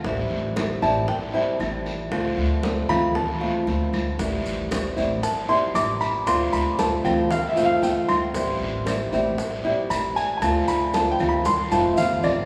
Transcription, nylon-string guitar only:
X:1
M:4/4
L:1/8
Q:1/4=116
K:Am
V:1 name="Nylon-string guitar"
[E,G,CE]2 [E,G,CE] [G,CE] z [G,CE] [E,G,CE]2 | [D,A,CF]2 [D,A,CF] [A,CF] z [A,CF] [D,A,CF]2 | [E,G,CE]2 [E,G,CE] [G,CE] z [G,CE] [E,G,CE]2 | [D,A,CF]2 [D,A,CF] [A,CF] z [A,CF] [D,A,CF]2 |
[E,G,CE]2 [E,G,CE] [G,CE] z [G,CE] [E,G,CE]2 | [D,A,CF]2 [D,A,CF] [A,CF] z [A,CF] [D,A,CF]2 |]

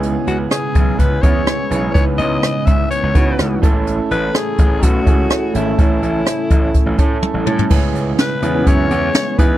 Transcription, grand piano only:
X:1
M:4/4
L:1/16
Q:1/4=125
K:C#m
V:1 name="Grand piano"
[B,CEG]4- [B,CEG] z4 z [B,CEG]4 [B,CEG]2 | [B,CDEB]6- [B,CDEB] z3 [B,CDEF]4 [A,CEA]2- | [A,CEA]4- [A,CEA] z4 z [A,CEG]4 [A,CEA]2 | [A,CEA]6- [A,CEA] z3 [A,CEA]4 [A,CEA]2 |
[B,CEG]6 [B,CEG] [B,CEG]6- [B,CEG] [B,DEG]2 |]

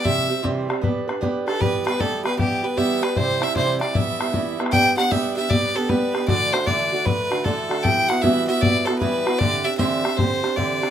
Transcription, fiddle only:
X:1
M:4/4
L:1/8
Q:"Swing" 1/4=154
K:Em
V:1 name="Fiddle"
e2 z4 z A | B B A B G B e B | c e c d e3 z | [K:G] g f e e d A B2 |
d c d2 B2 A2 | g f e e d A B2 | d e e2 c2 d2 |]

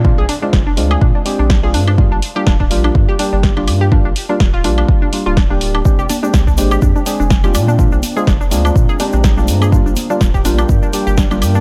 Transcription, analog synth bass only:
X:1
M:4/4
L:1/16
Q:"Swing 16ths" 1/4=124
K:Bbmix
V:1 name="Analog synth bass" clef=bass
B,, B,,, z2 F,,,2 D,,2 B,, z2 B,,,3 G,,2- | G,, G,,, z2 D,,,2 B,,,2 G,, z2 G,,,3 G,,2- | G,, G,,, z2 D,,,2 B,,,2 z3 D,,,4- D,,, | z F,,, z2 C,,2 A,,,2 F,, z2 F,,,3 B,,2- |
B,, B,,, z2 F,,,2 D,,2 B,, z2 B,,,3 G,,2- | G,, G,,, z2 D,,,2 B,,,2 G,, z2 G,,,3 G,,2 |]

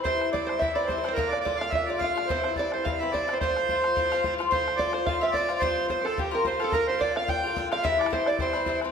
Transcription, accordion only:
X:1
M:4/4
L:1/16
Q:"Swing" 1/4=216
K:F
V:1 name="Accordion"
c4 d2 c2 e2 d2 c4 | B2 d2 d2 f2 e2 d2 f4 | c4 d2 c2 f2 e2 d3 c | c12- c2 z2 |
c4 d2 c2 f2 e2 d4 | c4 c2 A2 G2 B2 c2 A2 | B2 c2 d2 f2 g6 f2 | e2 d2 c2 d2 c6 z2 |]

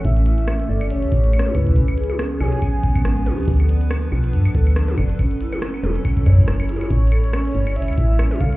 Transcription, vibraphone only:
X:1
M:4/4
L:1/16
Q:"Swing 16ths" 1/4=140
K:Aphr
V:1 name="Vibraphone"
^C z E z C z A z C A ^c z C z E z | ^C z ^G z C G ^c z C z C C ^G, C =G C | D A d z D z F z D z A z D A d z | ^C z E z C z A z C A ^c z C z E z |
^C z A z C A ^c z C z E z C z A z |]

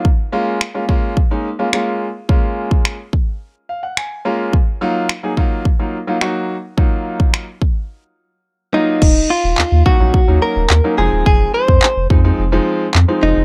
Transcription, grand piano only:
X:1
M:4/4
L:1/16
Q:1/4=107
K:Ebdor
V:1 name="Grand piano"
z2 [A,B,DF]2 z [A,B,DF] [A,B,DF]2 z [A,B,DE] z [A,B,DF] [A,B,DF]2 z2 | [A,B,DF]4- [A,B,DF] z4 z f g a2 [A,B,DFb]2 | z2 [G,B,EF]2 z [G,B,EA] [G,B,EF]2 z [G,B,EF] z [G,B,EF] [G,B,EG]2 z2 | [G,B,EF]4- [G,B,EF] z8 z [G,B,EF]2 |
z6 [G,B,DE] [G,B,DE] z [G,B,DE]2 z2 [G,B,DE] [F,A,CE]2- | [F,A,CE]4 z2 [F,A,CE] [F,A,CE] z [F,A,CE]2 z2 [F,A,CE]3 |]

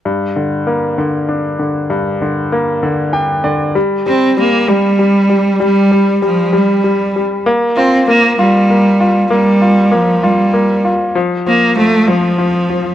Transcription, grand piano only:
X:1
M:6/8
L:1/8
Q:3/8=65
K:Gm
V:1 name="Grand piano" clef=bass
G,, D, B, D, D D, | G,, D, B, D, [Dg] [D,d] | G, G, G, G, G, G, | G, G, G, G, G, G, |
B, F B, F B, F | B, F B, F B, F | F, F, F, F, F, F, |]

